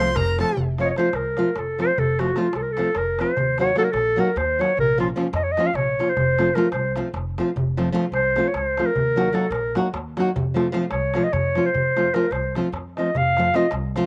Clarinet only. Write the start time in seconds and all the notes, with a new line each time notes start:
Already playing: C5
0.16 A#4
0.40 A4
0.81 C#5 D#5
0.91 C#5
0.97 C5
1.16 A#4
1.58 A4
1.81 C5
1.99 A4
2.20 F#4
2.37 F4
2.56 A4
2.62 A#4
2.72 A4
2.97 A#4
3.21 C5
3.60 C#5
3.78 A4
3.84 A#4
3.91 A4
4.20 A#4
4.38 C5
4.61 C#5
4.80 A#4
5.00 F4
5.35 D#5
5.43 C#5
5.52 D#5
5.66 F5
5.76 C#5
6.09 C5
6.55 A#4
6.71 C5
8.14 C5
8.47 C#5
8.56 C5
8.86 A#4
9.34 A4
9.51 A#4
10.90 C#5
11.24 D#5
11.33 C#5
11.66 C5
12.14 A#4
12.32 C5
12.98 D#5
13.17 F5
13.55 D#5